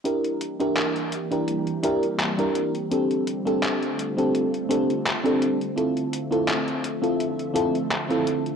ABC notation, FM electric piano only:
X:1
M:4/4
L:1/16
Q:"Swing 16ths" 1/4=84
K:Cmix
V:1 name="FM electric piano"
[DEGB]3 [DEGB]4 [DEGB]3 [DEGB] z2 [DEGB]2 z | [CDGA]3 [CDGA]4 [CDGA]3 [CDGA] z2 [CDGA]2 z | [CEFA]3 [CEFA]4 [CEFA]3 [CEFA] z2 [CEFA]2 z |]